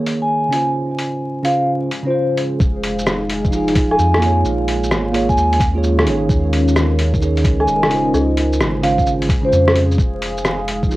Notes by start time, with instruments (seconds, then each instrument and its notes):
Already playing: tine electric piano D#3 A#3 G#4 C#5, analog synth pad G#3 C#4 D#4 A#4 D#5
0.06 open hi-hat
0.22 vibraphone G#5
0.48 tine electric piano C#3 C#4
0.52 tine electric piano F4 C5, open hi-hat
0.99 open hi-hat
1.28 analog synth pad F4 F5
1.43 tine electric piano C#3 C#4 F4 C5, vibraphone F5, open hi-hat
1.61 analog synth pad G#4
1.91 open hi-hat
2.03 tine electric piano C#3 C#4
2.07 tine electric piano F4 C5, vibraphone C5
2.37 open hi-hat
2.60 sub bass F1, kick, shaker
2.78 analog synth pad D#4 G#5
2.84 open hi-hat
2.99 shaker
3.07 cross-stick, shaker
3.30 open hi-hat
3.45 tine electric piano F3, kick, shaker
3.51 tine electric piano D#4 F4, shaker
3.56 tine electric piano G#4
3.68 open hi-hat
3.75 sub bass D#1, kick, open hi-hat, shaker
3.91 vibraphone G#5, low woodblock
3.99 sub bass F2, shaker
4.14 tine electric piano A#3, cross-stick, low woodblock
4.21 tine electric piano F4 G#4, open hi-hat
4.26 tine electric piano C#5
4.45 sub bass A#1, shaker
4.68 open hi-hat
4.78 analog synth pad C#4
4.83 shaker
4.91 sub bass G#1, cross-stick, shaker
5.10 tine electric piano A#3 F4, analog synth pad F4 A#4
5.14 tine electric piano G#4 C#5, open hi-hat
5.29 vibraphone G#5, kick, shaker
5.37 sub bass D#2, shaker
5.53 open hi-hat
5.60 kick, open hi-hat, shaker
5.74 tine electric piano A#3 F4 G#4
5.78 tine electric piano C#5
5.83 shaker
5.99 tine electric piano D#3, cross-stick, low woodblock
6.05 sub bass G#1, tine electric piano D#4 G#4, open hi-hat
6.10 tine electric piano C#5
6.29 sub bass D#2, kick, shaker
6.53 open hi-hat
6.68 shaker
6.76 cross-stick, shaker
6.99 open hi-hat
7.14 tine electric piano D#3, analog synth pad D#4 D#5, kick, shaker
7.20 tine electric piano D#4 G#4, shaker
7.25 tine electric piano C#5
7.37 open hi-hat
7.44 sub bass C#2, kick, open hi-hat, shaker
7.60 vibraphone G#5, low woodblock
7.68 sub bass D#1, shaker
7.83 tine electric piano C#3, cross-stick, low woodblock
7.89 tine electric piano C#4 F4, open hi-hat
7.95 tine electric piano C5
8.14 sub bass C#2, low woodblock, shaker
8.36 analog synth pad G#4, open hi-hat
8.44 analog synth pad F5
8.53 shaker
8.60 sub bass G#1, cross-stick, shaker
8.81 tine electric piano C#3 C#4 F4, vibraphone F5, open hi-hat
8.85 analog synth pad F4, tine electric piano C5
8.98 kick, shaker
9.06 shaker
9.22 open hi-hat
9.29 kick, open hi-hat, shaker
9.41 tine electric piano C#3 C#4
9.45 tine electric piano F4 C5, vibraphone C5
9.52 sub bass F2, shaker
9.68 cross-stick, low woodblock
9.76 open hi-hat
9.91 shaker
9.98 sub bass F1, kick, shaker
10.22 open hi-hat
10.27 analog synth pad D#4
10.38 shaker
10.45 cross-stick, shaker
10.67 analog synth pad G#5, open hi-hat
10.83 tine electric piano F3, kick, shaker
10.89 tine electric piano D#4 F4, shaker